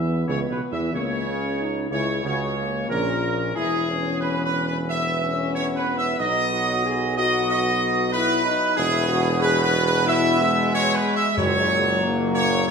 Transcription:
Already playing: tuba E2, trombone section E3, french horn section B3, trumpet section E5
0.26 tuba C#2, trombone section C#3, trumpet section C#5
0.49 tuba B1, trombone section B2, trumpet section B4
0.72 tuba E2, trombone section E3, trumpet section E5
0.92 tuba C#2, trombone section C#3, french horn section A#3, trumpet section C#5
1.25 french horn section C#4
1.59 french horn section D#4
1.90 tuba C#2, trombone section C#3, french horn section E4, trumpet section C#5
2.22 tuba C#2, trombone section C#3, french horn section F#4, trumpet section C#5
2.57 french horn section A#3
2.88 tuba A#1, trombone section A#2, french horn section C#4, trumpet section A#4
3.55 tuba E1, trombone section E3 B3, french horn section E4, trumpet section G#4
3.89 french horn section C#4
4.21 trumpet section B4
4.44 trumpet section B4
4.66 trumpet section B4
4.89 french horn section B3, trumpet section E5
5.23 french horn section C#4
5.54 trumpet section C#5
5.76 trumpet section B4
5.97 trumpet section E5
6.19 tuba B1, trombone section F#3, french horn section D#4, trumpet section D#5
6.52 french horn section F#4
6.85 french horn section G#4
7.17 french horn section F#4, trumpet section D#5
7.49 trumpet section D#5
8.12 french horn section E4, trumpet section B4
8.45 french horn section D#4
8.77 tuba E1, trombone section B2 B3, french horn section E4, trumpet section G#4
9.08 french horn section F#4
9.40 french horn section G#4, trumpet section B4
9.63 trumpet section B4
9.85 trumpet section B4
10.06 french horn section E4, trumpet section E5
10.39 french horn section G#3
10.73 trumpet section C#5
10.95 trumpet section B4
11.16 trumpet section E5
11.37 tuba F#1, timpani F#2, trombone section A#2 F#3, trumpet section C#5
12.02 french horn section A#3
12.34 trumpet section C#5
12.66 trumpet section C#5

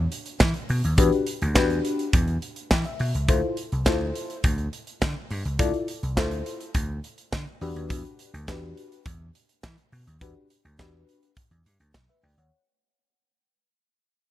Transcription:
0.12 closed hi-hat
0.26 closed hi-hat
0.40 slap bass E3, kick, snare, clap
0.54 closed hi-hat
0.69 slap bass B2, open hi-hat
0.84 slap bass D#2, closed hi-hat
0.98 slap bass E2, fm electric piano D4 F#4 G4 B4, kick, closed hi-hat
1.12 closed hi-hat
1.27 closed hi-hat
1.42 slap bass D2, closed hi-hat
1.55 slap bass E2, fm electric piano D4 F#4 G4 B4, kick, snare, clap
1.70 closed hi-hat
1.85 closed hi-hat
1.99 closed hi-hat
2.13 slap bass E2, kick, closed hi-hat
2.27 closed hi-hat
2.42 closed hi-hat
2.56 closed hi-hat
2.71 slap bass E3, fm electric piano G5, kick, snare, clap
2.84 fm electric piano E5, closed hi-hat
2.99 slap bass B2, open hi-hat
3.15 slap bass C#2, closed hi-hat
3.28 slap bass D2, fm electric piano E4 F4 A4 C5, kick, closed hi-hat
3.57 closed hi-hat
3.72 slap bass C2, closed hi-hat
3.86 slap bass D2, fm electric piano E4 F4 A4 C5, kick, snare, clap
4.15 closed hi-hat
4.30 closed hi-hat
4.44 slap bass D2, kick, closed hi-hat
4.58 closed hi-hat
4.73 closed hi-hat
4.87 closed hi-hat
5.02 slap bass D3, kick, snare, clap
5.30 slap bass G2, open hi-hat
5.45 slap bass C#2, closed hi-hat
5.59 slap bass D2, fm electric piano E4 F4 A4 D5, kick, closed hi-hat
5.74 closed hi-hat
5.88 closed hi-hat
6.03 slap bass C2, closed hi-hat
6.17 slap bass D2, fm electric piano E4 F4 A4 C5, kick, snare, clap
6.31 closed hi-hat
6.46 closed hi-hat
6.61 closed hi-hat
6.74 slap bass D2, kick, closed hi-hat
7.04 closed hi-hat
7.18 closed hi-hat
7.32 slap bass D3, kick, snare, clap
7.61 slap bass E2, fm electric piano D4 F#4 G4 B4, open hi-hat
7.76 slap bass D#2, closed hi-hat
7.90 slap bass E2, kick, closed hi-hat
8.05 closed hi-hat
8.19 closed hi-hat
8.34 slap bass D2, closed hi-hat
8.48 fm electric piano D4 F#4 G4 B4, kick, snare, clap
8.77 closed hi-hat
8.92 closed hi-hat
9.06 slap bass E2, kick, closed hi-hat
9.35 closed hi-hat
9.49 closed hi-hat
9.63 slap bass E3, kick, snare, clap
9.78 closed hi-hat
9.92 slap bass B2, open hi-hat
10.07 slap bass D#2, closed hi-hat
10.21 slap bass E2, fm electric piano D4 F#4 G4 B4, kick, closed hi-hat
10.50 closed hi-hat
10.65 slap bass D2, closed hi-hat
10.79 slap bass E2, fm electric piano D4 F#4 G4 B4, kick, snare, clap
11.09 closed hi-hat
11.23 closed hi-hat
11.37 kick, closed hi-hat
11.51 slap bass E2, closed hi-hat
11.66 slap bass G2, closed hi-hat
11.80 slap bass D2, closed hi-hat
11.94 slap bass B1, kick, snare, clap
12.08 fm electric piano B4 E5, closed hi-hat
12.23 slap bass D2, fm electric piano D5 G5, open hi-hat
12.37 slap bass D#2, fm electric piano C#5 F#5, closed hi-hat

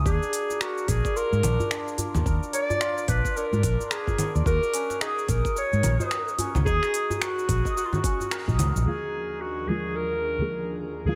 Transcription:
Already playing: santur A#3 C#4 D#4 F#4 A#4 D#5
0.05 fretless electric bass D#2, santur D4, clarinet G#4, kick, shaker
0.23 shaker
0.33 open hi-hat, shaker
0.50 djembe slap, djembe tone, shaker
0.61 clarinet F#4, santur A#4, finger snap, shaker
0.78 shaker
0.88 fretless electric bass A#1, clarinet G#4, santur A#4, kick, open hi-hat, shaker
1.05 santur D5, kick, shaker
1.16 santur F4, clarinet A#4, shaker
1.32 fretless electric bass G#2, shaker
1.43 fretless electric bass A#1, santur D4, open hi-hat, low conga, shaker
1.60 djembe tone, djembe bass, shaker
1.71 santur D4, finger snap, shaker
1.88 shaker
1.98 open hi-hat, djembe tone, djembe bass, shaker
2.15 fretless electric bass D#2, djembe slap, low conga, shaker
2.26 fretless electric bass D#2, santur A#4, kick, shaker
2.43 shaker
2.53 santur A#4, clarinet D5, open hi-hat, shaker
2.70 santur D5, djembe slap, djembe tone, djembe bass, shaker
2.81 santur F4, finger snap, shaker
2.98 shaker
3.08 fretless electric bass A#1, santur D4, clarinet B4, kick, open hi-hat, shaker
3.25 kick, shaker
3.36 santur D4, clarinet A#4, shaker
3.53 fretless electric bass G#2, djembe bass, shaker
3.63 fretless electric bass A#1, kick, open hi-hat, shaker
3.80 djembe slap, djembe tone, shaker
3.85 clarinet A#4
3.91 clarinet G#4, santur A#4, finger snap, shaker
4.07 kick, djembe bass, shaker
4.18 santur A#4, open hi-hat, low conga, shaker
4.35 fretless electric bass D#2, santur D5, djembe tone, shaker
4.46 fretless electric bass D#2, santur F#4, clarinet A#4, kick, shaker
4.63 shaker
4.74 santur C#4, open hi-hat, shaker
4.90 djembe slap, djembe tone, shaker
5.01 santur D#4, clarinet G#4, finger snap, shaker
5.19 shaker
5.28 fretless electric bass A#1, clarinet A#4, kick, open hi-hat, shaker
5.45 kick, shaker
5.56 santur A#4, clarinet C#5, shaker
5.73 fretless electric bass G#2, shaker
5.83 fretless electric bass A#1, santur A#4, open hi-hat, low conga, shaker
6.00 santur D#5, djembe tone, djembe bass, shaker
6.11 santur F#4, finger snap, shaker
6.28 shaker
6.38 santur C#4, open hi-hat, djembe tone, djembe bass, shaker
6.55 fretless electric bass C#2, djembe slap, low conga, shaker
6.66 fretless electric bass D#2, santur D#4, clarinet G#4, kick, shaker
6.83 finger snap, shaker
6.94 open hi-hat, shaker
7.10 djembe slap, djembe tone, djembe bass, shaker
7.15 clarinet G#4
7.21 clarinet F#4, santur A#4, finger snap, shaker
7.39 shaker
7.49 fretless electric bass A#1, santur A#4, kick, open hi-hat, shaker
7.65 santur D#5, kick, shaker
7.76 clarinet F#4, santur F#4, shaker
7.85 clarinet F4
7.92 clarinet F#4, djembe bass, low conga, shaker
8.04 santur C#4, kick, open hi-hat, shaker
8.20 djembe slap, djembe tone, shaker
8.31 santur A#4, finger snap, shaker
8.48 fretless electric bass A#1, santur D#4, kick, djembe bass, shaker
8.59 fretless electric bass C#2, open hi-hat, low conga, shaker
8.76 fretless electric bass A#1, djembe tone, shaker
8.84 synth stab D#2 D3 F3 G#3 A#3 F4, analog synth pad D#2 F3 D4 G#4 A#4, clarinet G#4
9.41 clarinet F#4
9.67 synth stab D#2 D3 F3 G#3 A#3 F4, clarinet G#4
9.96 clarinet A#4
10.38 synth stab D#2 D3 F3 G#3 A#3
10.42 synth stab G#4
11.05 synth stab D#2 D3 F3 G#3 A#3, clarinet G#4
11.09 synth stab F4

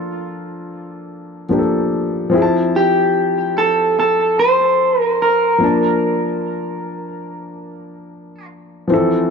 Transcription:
Already playing: grand piano F3 A#3 D4 A4
1.49 grand piano F3 A#3 D4 G4
1.59 grand piano A4
2.30 grand piano F3 C4 E4
2.35 grand piano G#4
2.42 grand piano A5
2.76 clean electric guitar G4
3.58 clean electric guitar A4
4.00 clean electric guitar A4
4.39 clean electric guitar C5
5.00 clean electric guitar A#4
5.22 clean electric guitar A#4
5.58 grand piano F3 A#3
5.62 grand piano D4 A5
8.87 grand piano F3 C4
8.92 grand piano E3 A4

